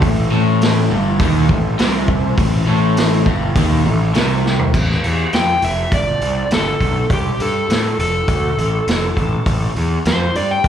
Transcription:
0.02 picked electric bass A1, overdriven electric guitar A2, tonewheel organ E3 A3 C4 E4, kick, open hi-hat
0.31 picked electric bass A1, overdriven electric guitar A2
0.61 snare, open hi-hat
0.91 picked electric bass G1, overdriven electric guitar G2
1.20 picked electric bass D#2, overdriven electric guitar D#3, kick, open hi-hat
1.49 picked electric bass A1, overdriven electric guitar A2, kick
1.79 picked electric bass C2, overdriven electric guitar C3, snare, open hi-hat
2.08 kick
2.36 picked electric bass A1, overdriven electric guitar A2, tonewheel organ E3 A3 C4 E4, kick, open hi-hat
2.68 picked electric bass A1, overdriven electric guitar A2
2.97 snare, open hi-hat
3.26 picked electric bass G1, overdriven electric guitar G2, kick
3.56 picked electric bass D#2, overdriven electric guitar D#3, kick, open hi-hat
3.85 picked electric bass A1, overdriven electric guitar A2
4.14 picked electric bass C2, overdriven electric guitar C3, snare, open hi-hat
4.46 snare
4.59 floor tom
4.74 picked electric bass A1, kick, crash
4.91 snare
5.04 picked electric bass E2, open hi-hat
5.33 picked electric bass F2, electric slide guitar G5, snare, open hi-hat
5.62 picked electric bass F1, electric slide guitar E5, open hi-hat
5.92 picked electric bass G1, electric slide guitar D5, kick, open hi-hat
6.21 picked electric bass C2, open hi-hat
6.51 picked electric bass G1, electric slide guitar A4, snare, open hi-hat
6.80 picked electric bass B1, kick, open hi-hat
7.10 picked electric bass C2, electric slide guitar G4, kick, open hi-hat
7.40 picked electric bass G2, electric slide guitar A4, open hi-hat
7.69 picked electric bass A2, snare, open hi-hat
7.99 picked electric bass F1, electric slide guitar A4, open hi-hat
8.28 picked electric bass D2, kick, open hi-hat
8.57 picked electric bass A1, open hi-hat
8.87 picked electric bass F1, snare, open hi-hat
9.17 picked electric bass A1, kick, open hi-hat
9.46 picked electric bass A1, kick, open hi-hat
9.76 picked electric bass E2, open hi-hat
10.05 picked electric bass F2, electric slide guitar C5, snare, open hi-hat
10.35 picked electric bass G2, electric slide guitar D5, open hi-hat
10.51 electric slide guitar G5
10.64 picked electric bass G1, kick, open hi-hat

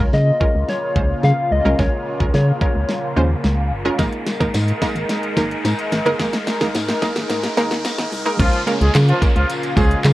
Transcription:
Already playing: analog synth pad C#3 A#3 F4, riser
0.00 synth pluck G#3 C#4 F4 A#4, kick
0.13 fm bass C#3, soft synth lead D#5, snare
0.41 synth pluck G#3 C#4 F4 A#4, kick
0.55 fm bass C#2
0.69 soft synth lead C#5, snare
0.96 fm bass C#2, synth pluck G#3 C#4 F4 C5, kick
1.24 fm bass C#3, soft synth lead F5, snare
1.51 fm bass C#2, soft synth lead D#5
1.65 fm bass C2, synth pluck G#3 C#4 F4 A#4
1.79 fm bass C#2, synth pluck G#3 C#4 F4 A#4, soft synth lead C#5, kick, snare
2.20 fm bass C#2, synth pluck G#3 C#4 F4 A#4, kick
2.34 fm bass C#3, soft synth lead C#5, snare
2.61 synth pluck G#3 C#4 F4 A#4, soft synth lead C#5, kick
2.75 fm bass C#2
2.89 snare
3.17 fm bass D#2, synth pluck G#3 C#4 F4 C5
3.44 fm bass C#2, snare
3.71 fm bass F#1
3.85 synth pluck G#3 C#4 F4 A#4
3.99 fm bass G#1, synth pluck G#3 A#3 D#4 A#4, analog synth pad G#3 D#4 A#4, kick, snare, closed hi-hat, tambourine
4.13 closed hi-hat
4.27 snare, closed hi-hat, tambourine
4.40 fm bass G#1, synth pluck G#3 A#3 D#4 A#4, kick, closed hi-hat, tambourine
4.54 fm bass G#2, snare, closed hi-hat, tambourine
4.68 closed hi-hat
4.82 synth pluck G#3 A#3 D#4 A#4, kick, snare, closed hi-hat, tambourine
4.95 fm bass G#1, closed hi-hat, tambourine
5.09 snare, closed hi-hat, tambourine
5.23 closed hi-hat
5.37 fm bass G#1, synth pluck G#3 A#3 D#4 A#4, kick, snare, closed hi-hat, tambourine
5.51 closed hi-hat
5.64 fm bass G#2, snare, closed hi-hat, tambourine
5.78 closed hi-hat
5.92 fm bass G#1, snare, closed hi-hat, tambourine
6.05 fm bass F#1, synth pluck G#3 A#3 D#4 A#4, closed hi-hat
6.19 fm bass G#1, synth pluck G#3 A#3 D#4 A#4, kick, snare, closed hi-hat, tambourine
6.33 snare, closed hi-hat
6.47 snare, closed hi-hat, tambourine
6.61 fm bass G#1, synth pluck G#3 A#3 D#4 A#4, kick, snare, closed hi-hat
6.74 fm bass G#2, snare, closed hi-hat, tambourine
6.88 snare, closed hi-hat
7.02 synth pluck G#3 A#3 D#4 A#4, kick, snare, closed hi-hat, tambourine
7.16 fm bass G#1, snare, closed hi-hat, tambourine
7.29 fm bass G#2, snare, closed hi-hat, tambourine
7.43 snare, closed hi-hat, tambourine
7.57 fm bass D#2, synth pluck G#3 A#3 D#4 A#4, snare, closed hi-hat, tambourine
7.71 snare, closed hi-hat
7.84 snare, closed hi-hat, tambourine
7.98 fm bass G#1, snare, closed hi-hat
8.12 fm bass C2, open hi-hat, tambourine
8.26 synth pluck G#3 A#3 D#4 A#4, closed hi-hat
8.39 fm bass C#2, analog synth pad C#3 A#3 F4, horn section F3 F4, synth pluck G#3 A#3 C#4 F4 A#4, kick, closed hi-hat, crash, tambourine, downlifter
8.53 closed hi-hat
8.67 synth pluck G#3 A#3 C#4 F4 A#4, closed hi-hat, tambourine
8.81 fm bass C#2, horn section G#3 G#4, closed hi-hat
8.94 fm bass C#3, snare, clap, closed hi-hat, tambourine
9.08 horn section F3 F4, closed hi-hat
9.21 synth pluck G#3 A#3 C#4 F4 A#4, kick, closed hi-hat, tambourine
9.36 fm bass C#2, horn section F3 F4, closed hi-hat
9.50 closed hi-hat, tambourine
9.63 closed hi-hat, tambourine
9.77 fm bass C#2, synth pluck G#3 A#3 C#4 F4 C5, horn section G#3 G#4, kick, closed hi-hat, tambourine
9.91 closed hi-hat
10.05 fm bass C#3, snare, clap, closed hi-hat, tambourine

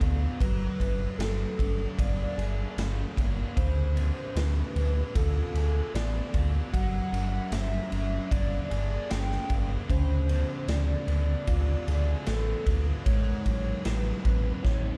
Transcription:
Already playing: distorted electric guitar C4 A4, soft synth lead A4
0.01 sub bass D2, distorted electric guitar F#4, kick, ride
0.40 sub bass G1, distorted electric guitar G3, soft synth lead B4, kick, ride
0.80 sub bass G1, distorted electric guitar D4, kick, ride
1.18 sub bass G1, distorted electric guitar G3, soft synth lead A4, snare, ride
1.59 sub bass G1, distorted electric guitar D4, kick, ride
1.98 sub bass G1, distorted electric guitar B3, soft synth lead D5, kick, ride
2.37 sub bass G1, distorted electric guitar A4, ride
2.77 sub bass G1, distorted electric guitar D4, snare, ride
3.17 sub bass G1, distorted electric guitar B3, kick, ride
3.57 sub bass D2, distorted electric guitar D3, soft synth lead C5, kick, ride
3.96 distorted electric guitar C4, ride
4.35 sub bass D2, distorted electric guitar D3, soft synth lead B4, snare, ride
4.75 sub bass D2, distorted electric guitar C4, ride
5.15 sub bass D2, distorted electric guitar F#4, soft synth lead A4, kick, ride
5.54 sub bass D2, distorted electric guitar A4, ride
5.94 sub bass A1, distorted electric guitar C4, soft synth lead D5, snare, ride
6.34 sub bass D2, distorted electric guitar F#4, kick, ride
6.73 sub bass G1, distorted electric guitar G3, soft synth lead F#5, kick, ride
7.12 sub bass G1, distorted electric guitar D4, ride
7.51 sub bass G1, distorted electric guitar G3, soft synth lead E5, snare, ride
7.91 sub bass G1, distorted electric guitar D4, ride
8.30 sub bass G1, distorted electric guitar B3, soft synth lead D5, kick, ride
8.70 sub bass G1, distorted electric guitar A4, ride
9.09 sub bass G1, distorted electric guitar D4, soft synth lead G5, snare, ride
9.32 snare
9.49 sub bass G1, distorted electric guitar B3, kick, ride
9.89 sub bass D2, distorted electric guitar D3, soft synth lead C5, kick, ride
10.28 distorted electric guitar C4, ride
10.68 sub bass D2, distorted electric guitar D3, soft synth lead D5, snare, ride
11.07 sub bass D2, distorted electric guitar C4, ride
11.47 sub bass D2, distorted electric guitar F#4, soft synth lead D5, kick, ride
11.87 sub bass D2, distorted electric guitar A4, ride
12.26 sub bass A1, distorted electric guitar C4, soft synth lead A4, snare, ride
12.67 sub bass D2, distorted electric guitar F#4, kick, ride
13.05 sub bass A1, distorted electric guitar A2, soft synth lead C#5, kick, ride
13.46 sub bass A1, distorted electric guitar G3, kick, ride
13.84 sub bass A1, distorted electric guitar G3, soft synth lead B4, snare, ride
14.24 sub bass A1, distorted electric guitar C#4, kick, ride
14.64 sub bass A1, distorted electric guitar E4, soft synth lead C#5, kick, snare

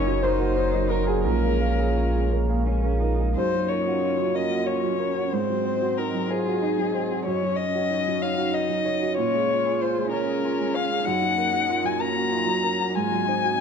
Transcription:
Already playing: sub bass F#1, grand piano F#2 F#3 D#4 F#4 A#4 C#5 D#5, analog synth pad F#3 A#3 D#5, cello C#4, harp C#4 D#4 A#4 D#5 F#5 G#5, violin C#5
0.07 grand piano F#3
0.22 cello D#4, harp D#4, grand piano A#4 C5, violin C5
0.39 grand piano F#4, harp A#4
0.56 grand piano D#4, harp A#4
0.74 grand piano F#3, harp D#4
0.90 harp F#4, grand piano A#4, violin A#4
1.07 grand piano F#4 G#4, violin G#4, harp G#4
1.24 sub bass A#1, grand piano A#2 A#4, analog synth pad G#3 F4 C#5, cello C#4, violin A#4, harp A#4
1.43 grand piano G#3, harp F5
1.61 grand piano A#4, harp F5
1.78 grand piano G#4, harp A#4
1.96 grand piano C#4, harp G#5
2.15 grand piano G#3
2.30 cello A#3, harp A#4, grand piano A#4
2.49 grand piano G#4, harp F5
2.65 cello C#4, grand piano C#4, harp F5
2.84 grand piano G#3, harp A#4
3.00 cello D#4, grand piano A#4
3.19 grand piano G#4, harp G#5
3.35 grand piano F#2, analog synth pad A#3 C#4 F4, cello D#4, violin C5
3.54 grand piano F#3
3.69 grand piano A#4, violin C#5
3.87 grand piano F#4
4.03 grand piano F4
4.19 grand piano F#3
4.34 cello C#4, grand piano A#4, violin D#5
4.50 grand piano F#4
4.67 grand piano F4, violin C#5
4.83 grand piano F#3
5.00 grand piano A#4
5.17 grand piano F#4
5.32 grand piano G#2, analog synth pad F#3 C4 D#5, cello C4, violin C5
5.49 grand piano F#3
5.65 grand piano C5
5.82 grand piano F#4
5.98 grand piano D#4, violin A#4
6.14 grand piano F#3
6.29 cello F4, violin G#4, grand piano C5
6.47 grand piano F#4
6.62 grand piano D#4, cello D#4
6.78 grand piano F#3
6.94 cello C4, grand piano C5
7.10 grand piano F#4
7.25 grand piano F#2, cello C#4, analog synth pad C#4, violin C#5
7.43 grand piano F#3
7.57 grand piano C#5, violin D#5
7.74 grand piano F#4
7.90 grand piano D#4
8.07 grand piano F#3
8.22 cello D#4, grand piano C#5, violin F5
8.38 grand piano F#4
8.53 grand piano D#4, violin D#5
8.69 grand piano F#3
8.85 grand piano C#5
9.02 grand piano F#4
9.17 grand piano A#2, cello F4, analog synth pad G#4 G#5, violin C#5
9.34 grand piano G#3
9.50 grand piano C#5
9.66 grand piano G#4
9.81 grand piano F4, violin C5
9.97 grand piano G#3
10.12 cello C#4, violin A#4, grand piano C#5
10.28 grand piano G#4
10.44 grand piano F4
10.60 grand piano G#3
10.74 grand piano C#5, violin F5
10.91 grand piano G#4
11.05 grand piano F#2, analog synth pad F#3 A#3, cello D#4, violin F#5
11.22 grand piano F#3
11.38 grand piano A#4
11.53 grand piano F#4
11.69 grand piano F4
11.84 grand piano F#3, violin G#5
12.00 cello C#4, grand piano A#4, violin A#5
12.16 grand piano F#4
12.31 cello D#4, grand piano F4
12.46 grand piano F#3
12.62 cello C#4, grand piano A#4
12.80 grand piano F#4
12.95 grand piano G#2, analog synth pad C4 D#5, cello F4, violin G#5
13.12 grand piano F#3
13.27 cello D#4, grand piano C5
13.44 grand piano F#4

